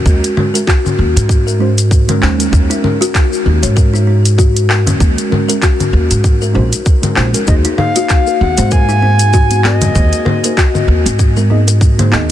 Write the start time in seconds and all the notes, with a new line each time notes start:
0.05 D#2 G#3 C#4 F#4 A#4, kick, shaker
0.24 closed hi-hat, shaker
0.36 G#3 C#4 F#4 A#4, low conga
0.53 G#3 C#4 F#4 A#4, closed hi-hat, shaker
0.67 F#4, kick, clap, shaker
0.85 C#4, low conga, shaker
0.99 D#2
1.16 G#2, closed hi-hat, shaker
1.29 kick, shaker
1.47 A#4, shaker
1.59 G#3 C#4 D#4 F#4 C5
1.78 closed hi-hat, shaker
1.91 kick, shaker
2.07 G#3 C#4 F#4 A#4, closed hi-hat, low conga, shaker
2.20 D#2 G#3 C#4 D#4 F#4 C5, clap
2.38 G#3 C#4 F#4 A#4, closed hi-hat, shaker
2.50 D#2 G#3 C#4 D#4 F#4 A#4, kick, shaker
2.70 D#4, closed hi-hat, shaker
2.82 G#3 C#4 F#4 A#4, low conga
2.99 G#3 C#4 F#4 A#4, closed hi-hat, shaker
3.15 kick, clap, shaker
3.33 shaker
3.46 D#2
3.63 G#2 C#5, closed hi-hat, shaker
3.76 A#4, kick, shaker
3.94 D#4, shaker
4.07 D#4
4.25 closed hi-hat, shaker
4.38 F#4, kick, shaker
4.56 closed hi-hat, shaker
4.69 A#4, clap
4.87 F#2 C#4, closed hi-hat, low conga, shaker
4.99 D#2 G#3 C#4 F#4 A#4, kick, shaker
5.18 closed hi-hat, shaker
5.30 G#3 C#4 F#4 A#4, low conga
5.47 G#3 C#4 F#4 A#4, closed hi-hat, shaker
5.62 F#4, kick, clap, shaker
5.80 C#4, closed hi-hat, low conga, shaker
5.93 D#2
6.11 G#2, closed hi-hat, shaker
6.24 kick, shaker
6.42 A#4, shaker
6.53 A#1 G#3 C#4 D#4 F#4 C5
6.73 closed hi-hat, shaker
6.86 kick, shaker
7.01 G#3 C#4 F#4 A#4, closed hi-hat, low conga, shaker
7.15 A#1 G#3 C#4 D#4 F#4 C5, clap
7.33 G#3 C#4 F#4 A#4, closed hi-hat, shaker
7.46 D#2 A#3 D#4 F#4 G#4 C5 D#5, kick, shaker
7.65 D#4, closed hi-hat, high bongo, shaker
7.77 A#3 D#4 G#4 C5 F5, high bongo, low conga
7.93 A#3 D#4 F#4 G#4 C5, closed hi-hat, shaker
8.09 kick, clap, shaker
8.27 high bongo, shaker
8.41 D#2 F#5, high conga
8.57 G#2 C5, closed hi-hat, high conga, low conga, shaker
8.71 A#4 G#5, kick, shaker
8.89 D#4, shaker
9.02 D#4, high conga
9.19 closed hi-hat, shaker
9.33 F#4, kick, shaker
9.51 closed hi-hat, high conga, shaker
9.64 A#4 D#5, clap, high bongo, high conga
9.82 F#2 C4, closed hi-hat, low conga, shaker
9.94 D#2 A#3 D#4 G#4 C5, kick, shaker
10.13 closed hi-hat, shaker
10.25 A#3 D#4 G#4 C5, high bongo, low conga
10.43 A#3 D#4 G#4 A#4 C5, closed hi-hat, shaker
10.57 F#4, kick, clap, shaker
10.74 C4, high bongo, low conga, shaker
10.88 D#2
11.05 G#2, closed hi-hat, high conga, low conga, shaker
11.19 kick, shaker
11.37 A#4, high conga, low conga, shaker
11.50 A#3 D#4 G#4 D#5, high conga, low conga
11.67 closed hi-hat, high bongo, shaker
11.81 kick, shaker
11.98 A#3 D#4 G#4 C5, closed hi-hat, low conga, shaker
12.11 D#2 A#3 D#4 G#4 D#5, clap, high conga